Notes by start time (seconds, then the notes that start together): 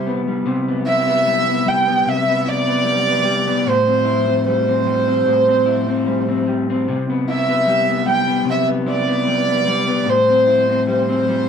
Already playing: C3 G3 E4
0.07 B3
0.28 G3
0.46 C3
0.68 B3
0.86 E4 E5
1.07 B3
1.26 G3
1.47 B3
1.65 G3 G5
1.87 B3
2.06 C3 E5
2.28 B3
2.46 E4 D5
2.67 B3
2.84 G3
3.07 B3
3.24 G3
3.47 B3
3.66 A2 C5
3.88 C4
4.05 E4
4.28 C4
4.47 G3 C5
4.69 C4
4.86 G3
5.08 C4
5.26 A2
5.48 C4
5.66 E4
5.88 C4
6.06 G3
6.29 C4
6.47 G3
6.70 C4
6.88 C3
7.10 B3
7.28 E4 E5
7.48 B3
7.67 G3
7.89 B3
8.06 G3 G5
8.28 B3
8.45 C3
8.51 E5
8.68 B3
8.86 E4 D5
9.08 B3
9.27 G3
9.49 B3
9.67 G3
9.88 B3
10.06 A2 C5
10.29 C4
10.47 E4
10.70 C4
10.87 G3 C5
11.09 C4
11.28 G3